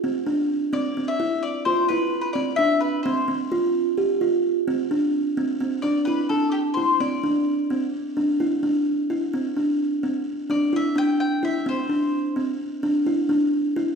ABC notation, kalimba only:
X:1
M:5/8
L:1/8
Q:1/4=129
K:C
V:1 name="Kalimba"
C D2 C C | E2 F E2 | C D2 C C | F2 G F2 |
C D2 C C | D E D2 E | C D2 C2 | D E D2 E |
C D2 C2 | D E D2 E | C D2 C2 | D E D2 E |]